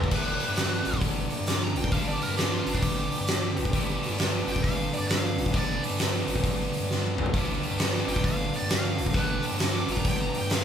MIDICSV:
0, 0, Header, 1, 5, 480
1, 0, Start_track
1, 0, Tempo, 451128
1, 133, Time_signature, 4, 2, 24, 8
1, 11324, End_track
2, 0, Start_track
2, 0, Title_t, "Lead electric guitar"
2, 0, Program_c, 0, 29
2, 0, Note_on_c, 0, 65, 79
2, 0, Note_on_c, 0, 74, 70
2, 120, Note_off_c, 0, 65, 0
2, 127, Note_off_c, 0, 74, 0
2, 143, Note_on_c, 0, 71, 88
2, 1069, Note_off_c, 0, 71, 0
2, 1573, Note_on_c, 0, 86, 92
2, 1728, Note_off_c, 0, 86, 0
2, 1743, Note_on_c, 0, 82, 79
2, 1882, Note_on_c, 0, 79, 77
2, 1893, Note_off_c, 0, 82, 0
2, 2043, Note_off_c, 0, 79, 0
2, 2043, Note_on_c, 0, 77, 88
2, 2211, Note_off_c, 0, 77, 0
2, 2211, Note_on_c, 0, 74, 78
2, 2367, Note_off_c, 0, 74, 0
2, 2370, Note_on_c, 0, 70, 87
2, 2524, Note_on_c, 0, 67, 90
2, 2526, Note_off_c, 0, 70, 0
2, 2698, Note_off_c, 0, 67, 0
2, 2698, Note_on_c, 0, 65, 86
2, 2851, Note_off_c, 0, 65, 0
2, 2863, Note_on_c, 0, 62, 97
2, 3005, Note_on_c, 0, 67, 101
2, 3013, Note_off_c, 0, 62, 0
2, 4406, Note_off_c, 0, 67, 0
2, 4777, Note_on_c, 0, 79, 112
2, 4922, Note_on_c, 0, 77, 100
2, 4930, Note_off_c, 0, 79, 0
2, 5237, Note_off_c, 0, 77, 0
2, 5257, Note_on_c, 0, 74, 96
2, 5404, Note_off_c, 0, 74, 0
2, 5408, Note_on_c, 0, 77, 91
2, 5875, Note_off_c, 0, 77, 0
2, 5889, Note_on_c, 0, 74, 101
2, 6193, Note_off_c, 0, 74, 0
2, 8608, Note_on_c, 0, 79, 109
2, 8765, Note_off_c, 0, 79, 0
2, 8778, Note_on_c, 0, 77, 99
2, 9086, Note_off_c, 0, 77, 0
2, 9110, Note_on_c, 0, 74, 81
2, 9257, Note_off_c, 0, 74, 0
2, 9265, Note_on_c, 0, 77, 97
2, 9725, Note_off_c, 0, 77, 0
2, 9742, Note_on_c, 0, 71, 101
2, 10040, Note_off_c, 0, 71, 0
2, 10375, Note_on_c, 0, 86, 93
2, 10530, Note_off_c, 0, 86, 0
2, 10558, Note_on_c, 0, 82, 106
2, 10701, Note_off_c, 0, 82, 0
2, 10723, Note_on_c, 0, 79, 85
2, 10864, Note_off_c, 0, 79, 0
2, 10867, Note_on_c, 0, 82, 83
2, 11016, Note_off_c, 0, 82, 0
2, 11044, Note_on_c, 0, 79, 84
2, 11185, Note_off_c, 0, 79, 0
2, 11196, Note_on_c, 0, 77, 85
2, 11324, Note_off_c, 0, 77, 0
2, 11324, End_track
3, 0, Start_track
3, 0, Title_t, "Overdriven electric guitar"
3, 0, Program_c, 1, 29
3, 0, Note_on_c, 1, 43, 85
3, 0, Note_on_c, 1, 50, 91
3, 0, Note_on_c, 1, 55, 90
3, 0, Note_on_c, 1, 59, 102
3, 0, Note_on_c, 1, 62, 95
3, 118, Note_off_c, 1, 43, 0
3, 118, Note_off_c, 1, 50, 0
3, 122, Note_on_c, 1, 43, 85
3, 131, Note_on_c, 1, 50, 84
3, 136, Note_off_c, 1, 55, 0
3, 141, Note_on_c, 1, 55, 98
3, 144, Note_off_c, 1, 59, 0
3, 148, Note_on_c, 1, 59, 87
3, 149, Note_off_c, 1, 62, 0
3, 153, Note_on_c, 1, 62, 88
3, 2033, Note_off_c, 1, 50, 0
3, 2039, Note_off_c, 1, 43, 0
3, 2043, Note_on_c, 1, 43, 82
3, 2046, Note_on_c, 1, 50, 73
3, 2052, Note_off_c, 1, 55, 0
3, 2056, Note_on_c, 1, 55, 94
3, 2058, Note_off_c, 1, 59, 0
3, 2062, Note_on_c, 1, 59, 101
3, 2065, Note_off_c, 1, 62, 0
3, 2069, Note_on_c, 1, 62, 98
3, 3959, Note_off_c, 1, 50, 0
3, 3966, Note_off_c, 1, 43, 0
3, 3970, Note_on_c, 1, 43, 92
3, 3978, Note_on_c, 1, 50, 94
3, 3979, Note_off_c, 1, 55, 0
3, 3983, Note_on_c, 1, 55, 92
3, 3988, Note_off_c, 1, 59, 0
3, 3992, Note_on_c, 1, 59, 98
3, 3993, Note_off_c, 1, 62, 0
3, 3997, Note_on_c, 1, 62, 104
3, 5874, Note_off_c, 1, 50, 0
3, 5880, Note_off_c, 1, 43, 0
3, 5884, Note_on_c, 1, 43, 85
3, 5887, Note_on_c, 1, 50, 89
3, 5891, Note_off_c, 1, 55, 0
3, 5896, Note_on_c, 1, 55, 89
3, 5898, Note_off_c, 1, 59, 0
3, 5902, Note_on_c, 1, 59, 95
3, 5906, Note_off_c, 1, 62, 0
3, 5910, Note_on_c, 1, 62, 83
3, 7797, Note_off_c, 1, 43, 0
3, 7799, Note_off_c, 1, 50, 0
3, 7802, Note_on_c, 1, 43, 82
3, 7813, Note_on_c, 1, 50, 90
3, 7815, Note_off_c, 1, 55, 0
3, 7819, Note_on_c, 1, 55, 106
3, 7821, Note_off_c, 1, 59, 0
3, 7825, Note_on_c, 1, 59, 88
3, 7830, Note_off_c, 1, 62, 0
3, 7834, Note_on_c, 1, 62, 94
3, 9723, Note_off_c, 1, 43, 0
3, 9723, Note_off_c, 1, 50, 0
3, 9728, Note_on_c, 1, 43, 74
3, 9738, Note_off_c, 1, 55, 0
3, 9738, Note_on_c, 1, 50, 80
3, 9743, Note_on_c, 1, 55, 96
3, 9748, Note_off_c, 1, 59, 0
3, 9752, Note_off_c, 1, 62, 0
3, 9752, Note_on_c, 1, 59, 101
3, 9756, Note_on_c, 1, 62, 102
3, 11324, Note_off_c, 1, 43, 0
3, 11324, Note_off_c, 1, 50, 0
3, 11324, Note_off_c, 1, 55, 0
3, 11324, Note_off_c, 1, 59, 0
3, 11324, Note_off_c, 1, 62, 0
3, 11324, End_track
4, 0, Start_track
4, 0, Title_t, "Sub bass"
4, 0, Program_c, 2, 38
4, 119, Note_on_c, 2, 31, 81
4, 403, Note_off_c, 2, 31, 0
4, 510, Note_on_c, 2, 43, 80
4, 871, Note_off_c, 2, 43, 0
4, 911, Note_on_c, 2, 31, 91
4, 992, Note_off_c, 2, 31, 0
4, 1078, Note_on_c, 2, 31, 91
4, 1362, Note_off_c, 2, 31, 0
4, 1487, Note_on_c, 2, 43, 94
4, 1860, Note_on_c, 2, 31, 94
4, 1876, Note_off_c, 2, 43, 0
4, 1946, Note_off_c, 2, 31, 0
4, 2036, Note_on_c, 2, 31, 84
4, 2321, Note_off_c, 2, 31, 0
4, 2422, Note_on_c, 2, 43, 77
4, 2786, Note_off_c, 2, 43, 0
4, 2832, Note_on_c, 2, 31, 89
4, 2912, Note_off_c, 2, 31, 0
4, 3007, Note_on_c, 2, 31, 99
4, 3287, Note_off_c, 2, 31, 0
4, 3408, Note_on_c, 2, 43, 87
4, 3804, Note_on_c, 2, 31, 99
4, 3820, Note_off_c, 2, 43, 0
4, 3879, Note_off_c, 2, 31, 0
4, 3964, Note_on_c, 2, 31, 86
4, 4245, Note_off_c, 2, 31, 0
4, 4353, Note_on_c, 2, 43, 82
4, 4712, Note_off_c, 2, 43, 0
4, 4758, Note_on_c, 2, 31, 88
4, 4835, Note_off_c, 2, 31, 0
4, 4933, Note_on_c, 2, 31, 91
4, 5210, Note_off_c, 2, 31, 0
4, 5312, Note_on_c, 2, 43, 93
4, 5718, Note_on_c, 2, 31, 104
4, 5734, Note_off_c, 2, 43, 0
4, 5795, Note_off_c, 2, 31, 0
4, 5891, Note_on_c, 2, 31, 78
4, 6169, Note_off_c, 2, 31, 0
4, 6276, Note_on_c, 2, 43, 88
4, 6634, Note_off_c, 2, 43, 0
4, 6677, Note_on_c, 2, 31, 89
4, 6755, Note_off_c, 2, 31, 0
4, 6847, Note_on_c, 2, 31, 85
4, 7126, Note_off_c, 2, 31, 0
4, 7233, Note_on_c, 2, 43, 96
4, 7626, Note_on_c, 2, 31, 108
4, 7642, Note_off_c, 2, 43, 0
4, 7709, Note_off_c, 2, 31, 0
4, 7804, Note_on_c, 2, 31, 84
4, 8085, Note_off_c, 2, 31, 0
4, 8200, Note_on_c, 2, 43, 83
4, 8556, Note_off_c, 2, 43, 0
4, 8591, Note_on_c, 2, 31, 89
4, 8672, Note_off_c, 2, 31, 0
4, 8769, Note_on_c, 2, 31, 103
4, 9048, Note_off_c, 2, 31, 0
4, 9169, Note_on_c, 2, 43, 91
4, 9566, Note_on_c, 2, 31, 104
4, 9582, Note_off_c, 2, 43, 0
4, 9640, Note_off_c, 2, 31, 0
4, 9720, Note_on_c, 2, 31, 94
4, 10003, Note_off_c, 2, 31, 0
4, 10123, Note_on_c, 2, 43, 89
4, 10478, Note_off_c, 2, 43, 0
4, 10516, Note_on_c, 2, 31, 90
4, 10595, Note_off_c, 2, 31, 0
4, 10684, Note_on_c, 2, 31, 97
4, 10966, Note_off_c, 2, 31, 0
4, 11073, Note_on_c, 2, 43, 98
4, 11324, Note_off_c, 2, 43, 0
4, 11324, End_track
5, 0, Start_track
5, 0, Title_t, "Drums"
5, 38, Note_on_c, 9, 36, 85
5, 119, Note_on_c, 9, 46, 74
5, 119, Note_on_c, 9, 49, 84
5, 123, Note_off_c, 9, 36, 0
5, 123, Note_on_c, 9, 36, 95
5, 226, Note_off_c, 9, 46, 0
5, 226, Note_off_c, 9, 49, 0
5, 229, Note_off_c, 9, 36, 0
5, 425, Note_on_c, 9, 46, 56
5, 532, Note_off_c, 9, 46, 0
5, 597, Note_on_c, 9, 46, 81
5, 613, Note_on_c, 9, 38, 103
5, 703, Note_off_c, 9, 46, 0
5, 719, Note_off_c, 9, 38, 0
5, 905, Note_on_c, 9, 46, 58
5, 996, Note_on_c, 9, 36, 68
5, 1011, Note_off_c, 9, 46, 0
5, 1070, Note_on_c, 9, 46, 79
5, 1080, Note_off_c, 9, 36, 0
5, 1080, Note_on_c, 9, 36, 88
5, 1177, Note_off_c, 9, 46, 0
5, 1187, Note_off_c, 9, 36, 0
5, 1386, Note_on_c, 9, 46, 51
5, 1492, Note_off_c, 9, 46, 0
5, 1560, Note_on_c, 9, 46, 69
5, 1575, Note_on_c, 9, 38, 93
5, 1666, Note_off_c, 9, 46, 0
5, 1682, Note_off_c, 9, 38, 0
5, 1870, Note_on_c, 9, 46, 58
5, 1958, Note_on_c, 9, 36, 73
5, 1976, Note_off_c, 9, 46, 0
5, 2039, Note_on_c, 9, 46, 82
5, 2043, Note_off_c, 9, 36, 0
5, 2043, Note_on_c, 9, 36, 91
5, 2146, Note_off_c, 9, 46, 0
5, 2149, Note_off_c, 9, 36, 0
5, 2358, Note_on_c, 9, 46, 51
5, 2465, Note_off_c, 9, 46, 0
5, 2526, Note_on_c, 9, 46, 71
5, 2542, Note_on_c, 9, 38, 99
5, 2632, Note_off_c, 9, 46, 0
5, 2648, Note_off_c, 9, 38, 0
5, 2835, Note_on_c, 9, 46, 55
5, 2922, Note_on_c, 9, 36, 69
5, 2941, Note_off_c, 9, 46, 0
5, 3003, Note_on_c, 9, 46, 67
5, 3007, Note_off_c, 9, 36, 0
5, 3007, Note_on_c, 9, 36, 93
5, 3109, Note_off_c, 9, 46, 0
5, 3113, Note_off_c, 9, 36, 0
5, 3316, Note_on_c, 9, 46, 46
5, 3423, Note_off_c, 9, 46, 0
5, 3481, Note_on_c, 9, 46, 65
5, 3497, Note_on_c, 9, 38, 108
5, 3587, Note_off_c, 9, 46, 0
5, 3603, Note_off_c, 9, 38, 0
5, 3796, Note_on_c, 9, 46, 52
5, 3886, Note_on_c, 9, 36, 69
5, 3902, Note_off_c, 9, 46, 0
5, 3970, Note_on_c, 9, 46, 69
5, 3971, Note_off_c, 9, 36, 0
5, 3971, Note_on_c, 9, 36, 90
5, 4077, Note_off_c, 9, 46, 0
5, 4078, Note_off_c, 9, 36, 0
5, 4289, Note_on_c, 9, 46, 54
5, 4395, Note_off_c, 9, 46, 0
5, 4452, Note_on_c, 9, 46, 74
5, 4468, Note_on_c, 9, 38, 105
5, 4558, Note_off_c, 9, 46, 0
5, 4574, Note_off_c, 9, 38, 0
5, 4765, Note_on_c, 9, 46, 55
5, 4852, Note_on_c, 9, 36, 71
5, 4871, Note_off_c, 9, 46, 0
5, 4937, Note_off_c, 9, 36, 0
5, 4937, Note_on_c, 9, 36, 88
5, 4939, Note_on_c, 9, 46, 76
5, 5043, Note_off_c, 9, 36, 0
5, 5045, Note_off_c, 9, 46, 0
5, 5251, Note_on_c, 9, 46, 51
5, 5357, Note_off_c, 9, 46, 0
5, 5418, Note_on_c, 9, 46, 76
5, 5434, Note_on_c, 9, 38, 116
5, 5525, Note_off_c, 9, 46, 0
5, 5541, Note_off_c, 9, 38, 0
5, 5728, Note_on_c, 9, 46, 53
5, 5811, Note_on_c, 9, 36, 81
5, 5834, Note_off_c, 9, 46, 0
5, 5894, Note_off_c, 9, 36, 0
5, 5894, Note_on_c, 9, 36, 98
5, 5901, Note_on_c, 9, 46, 76
5, 6001, Note_off_c, 9, 36, 0
5, 6007, Note_off_c, 9, 46, 0
5, 6211, Note_on_c, 9, 46, 60
5, 6317, Note_off_c, 9, 46, 0
5, 6368, Note_on_c, 9, 46, 73
5, 6384, Note_on_c, 9, 38, 105
5, 6474, Note_off_c, 9, 46, 0
5, 6490, Note_off_c, 9, 38, 0
5, 6678, Note_on_c, 9, 46, 57
5, 6763, Note_on_c, 9, 36, 63
5, 6785, Note_off_c, 9, 46, 0
5, 6848, Note_on_c, 9, 46, 71
5, 6849, Note_off_c, 9, 36, 0
5, 6849, Note_on_c, 9, 36, 84
5, 6955, Note_off_c, 9, 36, 0
5, 6955, Note_off_c, 9, 46, 0
5, 7163, Note_on_c, 9, 46, 46
5, 7269, Note_off_c, 9, 46, 0
5, 7350, Note_on_c, 9, 38, 60
5, 7456, Note_off_c, 9, 38, 0
5, 7643, Note_on_c, 9, 45, 84
5, 7725, Note_on_c, 9, 43, 75
5, 7750, Note_off_c, 9, 45, 0
5, 7807, Note_on_c, 9, 46, 72
5, 7808, Note_on_c, 9, 36, 109
5, 7831, Note_off_c, 9, 43, 0
5, 7913, Note_off_c, 9, 46, 0
5, 7914, Note_off_c, 9, 36, 0
5, 8120, Note_on_c, 9, 46, 47
5, 8227, Note_off_c, 9, 46, 0
5, 8283, Note_on_c, 9, 46, 70
5, 8299, Note_on_c, 9, 38, 108
5, 8390, Note_off_c, 9, 46, 0
5, 8406, Note_off_c, 9, 38, 0
5, 8601, Note_on_c, 9, 46, 54
5, 8684, Note_on_c, 9, 36, 78
5, 8707, Note_off_c, 9, 46, 0
5, 8769, Note_off_c, 9, 36, 0
5, 8769, Note_on_c, 9, 36, 86
5, 8769, Note_on_c, 9, 46, 71
5, 8875, Note_off_c, 9, 36, 0
5, 8875, Note_off_c, 9, 46, 0
5, 9084, Note_on_c, 9, 46, 52
5, 9190, Note_off_c, 9, 46, 0
5, 9249, Note_on_c, 9, 46, 76
5, 9265, Note_on_c, 9, 38, 120
5, 9356, Note_off_c, 9, 46, 0
5, 9371, Note_off_c, 9, 38, 0
5, 9558, Note_on_c, 9, 46, 62
5, 9645, Note_on_c, 9, 36, 79
5, 9665, Note_off_c, 9, 46, 0
5, 9719, Note_on_c, 9, 46, 75
5, 9728, Note_off_c, 9, 36, 0
5, 9728, Note_on_c, 9, 36, 101
5, 9826, Note_off_c, 9, 46, 0
5, 9835, Note_off_c, 9, 36, 0
5, 10030, Note_on_c, 9, 46, 58
5, 10136, Note_off_c, 9, 46, 0
5, 10202, Note_on_c, 9, 46, 77
5, 10218, Note_on_c, 9, 38, 102
5, 10309, Note_off_c, 9, 46, 0
5, 10325, Note_off_c, 9, 38, 0
5, 10516, Note_on_c, 9, 46, 58
5, 10608, Note_on_c, 9, 36, 64
5, 10622, Note_off_c, 9, 46, 0
5, 10689, Note_on_c, 9, 46, 68
5, 10692, Note_off_c, 9, 36, 0
5, 10692, Note_on_c, 9, 36, 88
5, 10795, Note_off_c, 9, 46, 0
5, 10798, Note_off_c, 9, 36, 0
5, 11004, Note_on_c, 9, 46, 51
5, 11110, Note_off_c, 9, 46, 0
5, 11168, Note_on_c, 9, 46, 67
5, 11184, Note_on_c, 9, 38, 102
5, 11274, Note_off_c, 9, 46, 0
5, 11290, Note_off_c, 9, 38, 0
5, 11324, End_track
0, 0, End_of_file